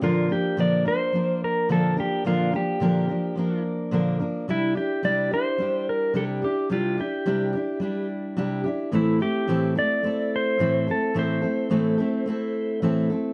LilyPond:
<<
  \new Staff \with { instrumentName = "Electric slide guitar" } { \time 4/4 \key bes \lydian \tempo 4 = 108 f'8 g'8 d''8 c''4 bes'8 a'8 g'8 | f'8 g'2 r4. | e'8 g'8 d''8 c''4 bes'8 a'8 g'8 | f'8 g'2 r4. |
e'8 g'4 d''4 c''4 a'8 | c''2. r4 | }
  \new Staff \with { instrumentName = "Steel-string acoustic guitar" } { \time 4/4 \key bes \lydian <bes, d f bes d' bes'>8 <f bes d' bes'>8 <bes, d f bes d' bes'>8 <f bes d' bes'>8 <f bes d' bes'>4 <bes, d f bes d' bes'>8 <f bes d' bes'>8 | <bes, d f bes d' bes'>8 <f bes d' bes'>8 <bes, d f bes d' bes'>8 <f bes d' bes'>8 <f bes d' bes'>4 <bes, d f bes d' bes'>8 <f bes d' bes'>8 | <c g d' e' g'>8 <d' e' g'>8 <c g d' e' g'>8 <d' e' g'>8 <g d' e' g'>4 <c g d' e' g'>8 <d' e' g'>8 | <c g d' e' g'>8 <d' e' g'>8 <c g d' e' g'>8 <d' e' g'>8 <g d' e' g'>4 <c g d' e' g'>8 <d' e' g'>8 |
<a, e a c' e' a'>8 <a c' e' a'>8 <a, e a c' e' a'>8 <a c' e' a'>8 <a c' e' a'>4 <a, e a c' e' a'>8 <a c' e' a'>8 | <a, e a c' e' a'>8 <a c' e' a'>8 <a, e a c' e' a'>8 <a c' e' a'>8 <a c' e' a'>4 <a, e a c' e' a'>8 <a c' e' a'>8 | }
>>